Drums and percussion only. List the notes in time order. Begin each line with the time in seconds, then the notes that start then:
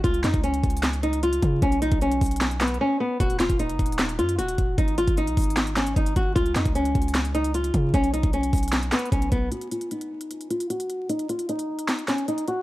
0.04 kick, closed hi-hat
0.14 closed hi-hat
0.24 snare, clap, closed hi-hat
0.34 kick, closed hi-hat
0.44 closed hi-hat
0.54 closed hi-hat
0.64 kick, closed hi-hat
0.70 closed hi-hat
0.77 closed hi-hat
0.83 snare, clap, closed hi-hat
0.93 closed hi-hat
1.03 closed hi-hat
1.13 closed hi-hat
1.23 closed hi-hat
1.33 closed hi-hat
1.42 kick, closed hi-hat
1.62 kick, closed hi-hat
1.72 closed hi-hat
1.82 closed hi-hat
1.92 kick, closed hi-hat
2.02 closed hi-hat
2.12 closed hi-hat
2.21 kick, closed hi-hat, open hi-hat
2.26 closed hi-hat
2.31 closed hi-hat
2.36 closed hi-hat
2.41 snare, clap, closed hi-hat
2.51 closed hi-hat
2.61 snare, clap, closed hi-hat
2.68 closed hi-hat
2.74 closed hi-hat
3.20 kick, closed hi-hat
3.30 closed hi-hat
3.40 snare, clap, closed hi-hat
3.50 kick, closed hi-hat
3.59 closed hi-hat
3.70 closed hi-hat
3.79 kick, closed hi-hat
3.86 closed hi-hat
3.92 closed hi-hat
3.99 snare, clap, closed hi-hat
4.09 closed hi-hat
4.19 closed hi-hat
4.29 closed hi-hat
4.39 closed hi-hat
4.48 closed hi-hat
4.58 kick, closed hi-hat
4.78 kick, closed hi-hat
4.88 closed hi-hat
4.98 closed hi-hat
5.07 kick, closed hi-hat
5.17 closed hi-hat
5.27 closed hi-hat
5.37 kick, closed hi-hat, open hi-hat
5.44 closed hi-hat
5.50 closed hi-hat
5.57 snare, clap, closed hi-hat
5.67 closed hi-hat
5.77 snare, clap, closed hi-hat
5.87 closed hi-hat
5.96 kick, closed hi-hat
6.06 closed hi-hat
6.16 kick, closed hi-hat
6.36 kick, closed hi-hat
6.46 closed hi-hat
6.55 snare, clap, closed hi-hat
6.65 kick, closed hi-hat
6.75 closed hi-hat
6.85 closed hi-hat
6.95 kick, closed hi-hat
7.02 closed hi-hat
7.08 closed hi-hat
7.15 snare, clap, closed hi-hat
7.25 closed hi-hat
7.35 closed hi-hat
7.45 closed hi-hat
7.54 closed hi-hat
7.64 closed hi-hat
7.74 kick, closed hi-hat
7.94 kick, closed hi-hat
8.04 closed hi-hat
8.14 closed hi-hat
8.23 kick, closed hi-hat
8.33 closed hi-hat
8.43 closed hi-hat
8.53 kick, closed hi-hat, open hi-hat
8.58 closed hi-hat
8.63 closed hi-hat
8.68 closed hi-hat
8.73 snare, clap, closed hi-hat
8.83 closed hi-hat
8.92 snare, clap, closed hi-hat
8.99 closed hi-hat
9.06 closed hi-hat
9.12 kick, closed hi-hat
9.22 closed hi-hat
9.32 kick, closed hi-hat
9.52 closed hi-hat
9.61 closed hi-hat
9.71 closed hi-hat
9.81 closed hi-hat
9.91 closed hi-hat
10.01 closed hi-hat
10.21 closed hi-hat
10.31 closed hi-hat
10.41 closed hi-hat
10.50 closed hi-hat
10.60 closed hi-hat
10.70 closed hi-hat
10.80 closed hi-hat
10.90 closed hi-hat
11.10 closed hi-hat
11.19 closed hi-hat
11.29 closed hi-hat
11.39 closed hi-hat
11.49 closed hi-hat
11.59 closed hi-hat
11.79 closed hi-hat
11.88 snare, clap, closed hi-hat
11.99 closed hi-hat
12.08 snare, clap, closed hi-hat
12.18 closed hi-hat
12.28 closed hi-hat
12.38 closed hi-hat
12.48 closed hi-hat